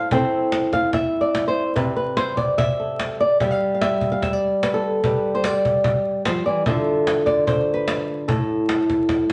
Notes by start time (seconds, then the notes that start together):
Already playing: A2 C5 F5
0.11 C4 E4 A4 C5 G5, cajon bass
0.52 cajon slap
0.73 F5, cajon bass, cajon slap
0.93 E5, cajon bass, cajon slap
1.21 D5
1.35 cajon slap
1.48 C5
1.56 cajon slap
1.76 C3 B4, cajon bass
1.96 B4
2.17 C5, cajon slap
2.37 D5, cajon bass
2.58 E5, cajon bass
2.80 A4
3.00 cajon slap
3.20 D5, cajon slap
3.40 G3 E5, cajon bass
3.51 F5
3.74 F5
3.81 E5, cajon slap
4.01 cajon bass
4.12 F5
4.22 E5, cajon bass, cajon slap
4.33 D5
4.63 B4, cajon slap
4.74 A4
4.83 cajon slap
5.04 G3 B4, cajon bass
5.35 C5
5.44 D5, cajon slap
5.65 cajon bass
5.84 cajon bass
6.25 F3 C5, cajon slap
6.46 E3 D5, cajon slap
6.66 D3 F4 A4 E5, cajon bass
7.07 cajon slap
7.26 D5, cajon bass, cajon slap
7.47 C5, cajon bass
7.74 B4
7.88 cajon slap
8.08 cajon slap
8.28 A2 A4, cajon bass
8.69 cajon slap
8.90 cajon bass, cajon slap
9.09 cajon bass, cajon slap